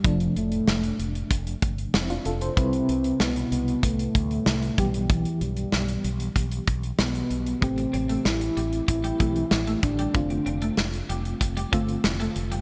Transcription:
<<
  \new Staff \with { instrumentName = "FM electric piano" } { \time 4/4 \key f \lydian \tempo 4 = 95 r2. <c' e'>16 <d' f'>16 <f' a'>16 <a' c''>16~ | <a' c''>16 r2. r8. | r1 | r1 |
r1 | }
  \new Staff \with { instrumentName = "FM electric piano" } { \time 4/4 \key f \lydian <c f a d'>1 | <c g e' b'>2.~ <c g e' b'>8 <e g b g'>8~ | <e g b g'>2.~ <e g b g'>8 r8 | <e a c' g'>2~ <e a c' g'>8 <e a c' g'>4. |
<d a c' f'>2~ <d a c' f'>8 <d a c' f'>4. | }
  \new Staff \with { instrumentName = "Soft synth lead" } { \time 4/4 \key f \lydian f8 a4. r2 | c'4 b8 b8 a4. g8 | e8 g4. r4 b4 | c'4 e'4 e'4. d'8~ |
d'4. r2 r8 | }
  \new Staff \with { instrumentName = "Clean electric guitar" } { \time 4/4 \key f \lydian r1 | r1 | r1 | r8 c'16 a16 r8 g16 r8 g16 a16 r8 a16 r16 g16 |
r8 c'16 a16 r8 g16 r8 g16 a16 r8 a16 r16 g16 | }
  \new Staff \with { instrumentName = "Fretless electric bass" } { \clef bass \time 4/4 \key f \lydian f,,8 f,,8 f,,8 f,,8 f,,8 g,,8 f,,8 f,,8 | c,8 c,8 c,8 c,8 c,8 d,8 c,8 b,,8~ | b,,8 b,,8 b,,8 b,,8 b,,8 b,,8 b,,8 b,,8 | a,,8 a,,8 a,,8 a,,8 a,,8 b,,8 a,,8 a,,8 |
f,,8 f,,8 f,,8 f,,8 f,,8 g,,8 f,,8 f,,8 | }
  \new DrumStaff \with { instrumentName = "Drums" } \drummode { \time 4/4 <hh bd>16 hh16 hh16 hh16 sn16 hh16 hh16 hh16 <hh bd>16 hh16 <hh bd>16 hh16 sn16 hh16 hh16 hh16 | <hh bd>16 hh16 hh16 hh16 sn16 hh16 hh16 hh16 <hh bd>16 hh16 <hh bd>16 hh16 sn16 hh16 <hh bd>16 hh16 | <hh bd>16 hh16 hh16 hh16 sn16 hh16 hh16 hh16 <hh bd>16 hh16 <hh bd>16 hh16 sn16 hh16 hh16 hh16 | <hh bd>16 hh16 hh16 hh16 sn16 hh16 hh16 hh16 <hh bd>16 hh16 <hh bd>16 hh16 sn16 hh16 <hh bd>16 hh16 |
<hh bd>16 hh16 hh16 hh16 sn16 hh16 hh16 hh16 <hh bd>16 hh16 <hh bd>16 hh16 sn16 hh16 hh16 hh16 | }
>>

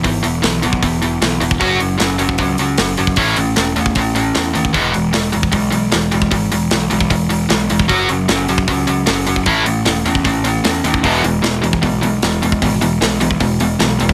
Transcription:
<<
  \new Staff \with { instrumentName = "Distorted electric guitar" } { \clef bass \time 4/4 \key e \major \tempo 4 = 153 <e b>8 <e b>8 <e b>8 <e b>8 <e b>8 <e b>8 <e b>8 <e b>8 | <fis cis' fis'>8 <fis cis'>8 <fis cis'>8 <fis cis'>8 <fis cis'>8 <fis cis'>8 <fis cis'>8 <fis cis'>8 | <a cis' e'>8 <a cis'>8 <a cis'>8 <a cis'>8 <a cis'>8 <a cis'>8 <a cis'>8 <a cis'>8 | <e gis b>8 <e gis>8 <e gis>8 <e gis>8 <e gis>8 <e gis>8 <e gis>8 <e gis>8 |
<e gis>8 <e gis>8 <e gis>8 <e gis>8 <e gis>8 <e gis>8 <e gis>8 <e gis>8 | <fis cis' fis'>8 <fis cis'>8 <fis cis'>8 <fis cis'>8 <fis cis'>8 <fis cis'>8 <fis cis'>8 <fis cis'>8 | <a cis' e'>8 <a cis'>8 <a cis'>8 <a cis'>8 <a cis'>8 <a cis'>8 <a cis'>8 <a cis'>8 | <e gis b>8 <e gis>8 <e gis>8 <e gis>8 <e gis>8 <e gis>8 <e gis>8 <e gis>8 |
<e gis>8 <e gis>8 <e gis>8 <e gis>8 <e gis>8 <e gis>8 <e gis>8 <e gis>8 | }
  \new Staff \with { instrumentName = "Overdriven electric guitar" } { \clef bass \time 4/4 \key e \major r1 | r1 | r1 | r1 |
r1 | r1 | r1 | <e, b, e>8 <e, b,>8 <e, b,>8 <e, b,>8 <e, b,>8 <e, b,>8 <e, b,>8 <e, b,>8 |
<e, b,>8 <e, b,>8 <e, b,>8 <e, b,>8 <e, b,>8 <e, b,>8 <e, b,>8 <e, b,>8 | }
  \new Staff \with { instrumentName = "Picked electric bass" } { \clef bass \time 4/4 \key e \major gis,,8 e,,8 b,,8 b,,8 e,,4 b,,8 e,,8 | fis,,8 fis,,8 fis,,8 fis,,8 cis,8 cis,8 fis,,8 fis,,8 | a,,8 a,,8 e,,8 e,8 a,,4 e,8 dis,8 | e,,8 e,,8 e,,8 e,,8 b,,8 b,,8 e,,8 e,,8 |
gis,,8 e,,8 b,,8 b,,8 e,,4 b,,8 e,,8 | fis,,8 fis,,8 fis,,8 fis,,8 cis,8 cis,8 fis,,8 fis,,8 | a,,8 a,,8 e,,8 e,8 a,,4 e,8 dis,8 | e,,8 e,,8 e,,8 e,,8 b,,8 b,,8 e,,8 e,,8 |
gis,,8 e,,8 b,,8 b,,8 e,,4 b,,8 e,,8 | }
  \new DrumStaff \with { instrumentName = "Drums" } \drummode { \time 4/4 <hho bd>8 hho8 <hho sn>8 hho16 bd16 <hho bd>8 hho8 <hho sn>8 hho16 bd16 | <hho bd>8 hho8 <hho sn>8 hho16 bd16 <hho bd>8 hho8 <hho sn>8 hho16 bd16 | <hho bd>8 hho8 <hho sn>8 hho16 bd16 <hho bd>8 hho8 <hho sn>8 hho16 bd16 | <hho bd>8 hho8 <hho sn>8 hho16 bd16 <hho bd>8 hho8 <hho sn>8 hho16 bd16 |
<hho bd>8 hho8 <hho sn>8 hho16 bd16 <hho bd>8 hho8 <hho sn>8 hho16 bd16 | <hho bd>8 hho8 <hho sn>8 hho16 bd16 <hho bd>8 hho8 <hho sn>8 hho16 bd16 | <hho bd>8 hho8 <hho sn>8 hho16 bd16 <hho bd>8 hho8 <hho sn>8 hho16 bd16 | <hho bd>8 hho8 <hho sn>8 hho16 bd16 <hho bd>8 hho8 <hho sn>8 hho16 bd16 |
<hho bd>8 hho8 <hho sn>8 hho16 bd16 <hho bd>8 hho8 <hho sn>8 hho16 bd16 | }
>>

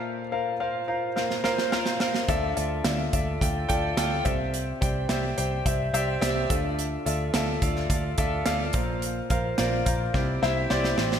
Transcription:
<<
  \new Staff \with { instrumentName = "Grand piano" } { \time 4/4 \key d \minor \tempo 4 = 107 <f' bes' c'' f''>8 <f' bes' c'' f''>8 <f' bes' c'' f''>8 <f' bes' c'' f''>8 <f' bes' c'' f''>8 <f' bes' c'' f''>8 <f' bes' c'' f''>8 <f' bes' c'' f''>8 | <f' a' d'' e''>8 <f' a' d'' e''>8 <f' a' d'' e''>8 <f' a' d'' e''>8 <f' a' d'' g''>8 <f' a' d'' g''>8 <f' a' d'' g''>8 <g' c'' d'' e''>8~ | <g' c'' d'' e''>8 <g' c'' d'' g''>8 <g' c'' d'' e''>8 <g' c'' d'' g''>8 <g' c'' d'' e''>8 <g' c'' d'' e''>8 <g' c'' d'' e''>8 <f' a' d'' e''>8~ | <f' a' d'' e''>8 <f' a' d'' e''>8 <f' a' d'' e''>8 <f' a' d'' f''>8 <f' a' d'' f''>8 <f' a' d'' e''>8 <f' a' d'' f''>8 <f' bes' c'' f''>8~ |
<f' bes' c'' f''>8 <f' bes' c'' f''>8 <f' bes' c'' d''>8 <f' bes' c'' f''>8 <e' g' c'' d''>8 <e' g' c'' e''>8 <e' g' c'' d''>8 <e' g' c'' e''>8 | }
  \new Staff \with { instrumentName = "Grand piano" } { \clef bass \time 4/4 \key d \minor bes,4 r2. | d4. r2 c8~ | c4 r2 r8 d8~ | d4 r2 r8 bes,8~ |
bes,4 r4 c4. r8 | }
  \new Staff \with { instrumentName = "Picked electric bass" } { \clef bass \time 4/4 \key d \minor r1 | d,8 d,8 d,8 d,8 d,8 d,8 d,8 c,8~ | c,8 c,8 c,8 c,8 c,8 c,8 c,8 d,8~ | d,8 d,8 d,8 d,8 d,8 d,8 d,8 bes,,8~ |
bes,,8 bes,,8 bes,,8 bes,,8 c,8 c,8 c,8 a,,8 | }
  \new DrumStaff \with { instrumentName = "Drums" } \drummode { \time 4/4 r4 r4 sn16 sn16 sn16 sn16 sn16 sn16 sn16 sn16 | <hh bd>8 hh8 <hh sn>8 <hh bd>8 <hh bd>8 <hh bd>8 <hh sn>8 <hh bd>8 | hh8 <hh bd>8 <hh sn>8 hh8 <hh bd>8 hh8 <hh sn>8 <hh bd>8 | hh8 hh8 <hh sn>8 <hh bd>16 sn16 <hh bd>8 <hh bd>8 <hh sn>8 <hh bd>8 |
hh8 <hh bd>8 <hh sn>8 <hh bd>8 <bd sn>8 sn8 sn16 sn16 sn16 sn16 | }
>>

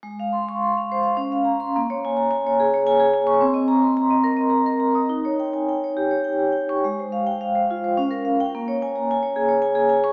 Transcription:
\new Staff \with { instrumentName = "Vibraphone" } { \time 3/4 \key aes \major \tempo 4 = 107 << { r8. des'''16 r4. r16 c'''16 | r2 r8. des'''16 | r2 r8. ees'''16 | r2 r8. des'''16 |
r8. g''16 r4. r16 g''16 | r2 r8. des'''16 | } \\ { aes16 f''16 c'''8 c'''16 f''16 c''16 f''16 des'16 f''16 bes''8 | bes16 des''16 aes''16 bes''16 aes''16 des''16 aes'16 des''16 aes''16 aes'16 aes''8 | c'16 ees''16 bes''16 c'''16 bes''16 ees''16 bes'16 ees''16 bes''16 bes'16 bes''8 | ees'16 des''16 g''16 aes''16 g''16 des''16 g'16 des''16 g''16 g'16 g''8 |
aes16 c''16 f''8 f''16 c''16 f'16 c''16 des'16 bes'16 f''8 | bes16 des''16 aes''16 bes''16 aes''16 des''16 aes'16 des''16 aes''16 aes'16 aes''8 | } >> }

